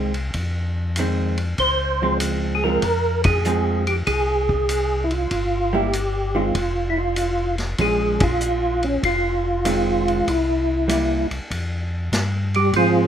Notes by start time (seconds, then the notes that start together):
Already playing: C2 D#3 G#3 C4
0.14 ride
0.34 F2, kick, ride
0.96 D#3 G#3 C4, hi-hat pedal, ride
1.38 ride
1.58 C#2 C5, kick, ride
2.02 F3 G#3 C4
2.20 hi-hat pedal, ride
2.55 G#4
2.64 F3 G#3 C4 A#4
2.82 F2, kick, ride
3.24 G#4, kick, ride
3.44 F3 G#3 C4, hi-hat pedal
3.87 G4, ride
4.07 C2 G#4, kick, ride
4.49 kick
4.69 hi-hat pedal, ride
5.04 E4
5.11 F4, ride
5.31 G1, kick, ride
5.73 G3 A#3 E4 G4
5.93 hi-hat pedal, ride
6.35 D#3 G#3 C4 F4
6.55 F1, kick, ride
6.90 E4
6.97 F4
7.16 hi-hat pedal, ride
7.58 snare, ride
7.78 A#1 F3 G#3 C#4 G#4, kick, ride
8.20 F4, kick, ride
8.40 hi-hat pedal
8.83 C#4, ride
9.03 F1 F4, kick, ride
9.65 D#3 G#3 C4, hi-hat pedal, ride
10.08 ride
10.27 C2 E4, kick, ride
10.88 G3 A#3 E4, hi-hat pedal, ride
11.31 C2, ride
11.50 F2, kick, ride
12.12 G2, kick, snare, hi-hat pedal, ride
12.54 G3 G4, ride
12.73 G#2 F3 C4 F4 G#4, kick, ride